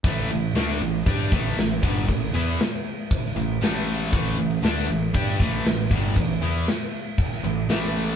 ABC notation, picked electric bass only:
X:1
M:4/4
L:1/8
Q:1/4=118
K:C
V:1 name="Picked electric bass" clef=bass
A,,, A,,, D,, A,,, G,, A,,, A,,, G,,, | A,,, E,, z3 A,,, A,,,2 | A,,, A,,, D,, A,,, G,, A,,, A,,, G,,, | A,,, E,, z3 A,,, A,,,2 |]